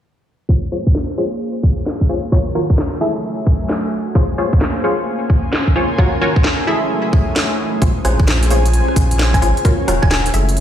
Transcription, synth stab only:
0.49 F4 G#4 C5 C#5
0.72 F4 G#4 C5 C#5
1.18 F4 G#4 C5 C#5
2.09 F4 G#4 C5 C#5
2.32 F4 F#4 A#4 C#5
2.55 F4 F#4 A#4 C#5
3.01 E4 G#4 A4 E5
4.15 F4 G#4 C5 C#5
4.38 F4 G#4 C5 C#5
4.84 F4 G#4 C5 C#5
5.76 F4 G#4 C5 C#5
5.99 F4 F#4 A#4 C#5
6.21 F4 F#4 A#4 C#5
6.67 E4 G#4 A4 E5
7.82 F4 G#4 C5 C#5
8.05 F4 G#4 C5 C#5
8.51 F4 G#4 C5 C#5
9.42 F4 G#4 C5 C#5
9.65 F4 F#4 A#4 C#5
9.88 F4 F#4 A#4 C#5
10.34 E4 G#4 A4 E5

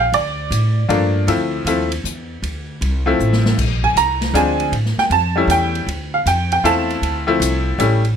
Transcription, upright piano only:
0.00 F5
0.14 D5
0.88 F3 A3 A#3 D4
1.28 F3 A3 C4 E4
1.66 F3 A3 C4 E4
3.06 F3 A3 C4 E4
3.84 G#5
3.97 A#5
4.34 F3 G#3 C4 D4 G#5
4.99 G5
5.12 A5
5.36 G3 A3 C#4 E4
5.51 G5
6.14 F5
6.27 G5
6.53 G5
6.64 A3 C4 E4 F4 A5
7.27 F3 A3 C4 E4
7.79 G3 A3 C#4 E4

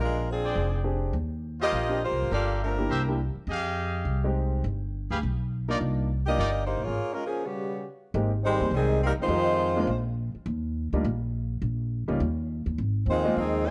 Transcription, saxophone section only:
0.01 G#3 D4 F4 A#4
0.30 F3 C4 D4 G#4
1.62 A#3 F4 G4 D#5
2.03 A#3 F4 G4 C5
2.33 A#3 F4 A4 D5
2.63 F3 A3 D4 A#4
6.26 A#3 G4 D5 D#5
6.65 A#3 D#4 G4 C5
6.84 A#3 F4 G#4 C#5
7.13 G#3 C#4 F4 A#4
7.25 F3 A#3 C#4 G#4
7.44 C#3 B3 F#4 G4
8.45 G#3 D#4 G4 C5
8.75 D#3 G3 C4 G#4
9.04 G3 C4 D#4 A#4
9.23 G#3 D#4 F4 C5
13.09 G#3 D#4 F4 C5
13.38 F3 C4 D#4 G#4
13.66 F4 C5 D#5 G#5

